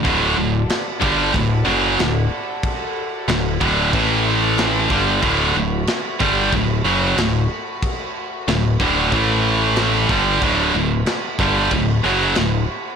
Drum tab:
CC |x-x-x-x-|x-x-x-x-|x-x-x-x-|x-x-x-x-|
SD |--o---o-|--o---o-|--o---o-|--o---o-|
BD |o--oo---|o--oo--o|o--oo---|o--oo--o|

CC |x-x-x-x-|
SD |--o---o-|
BD |o--oo---|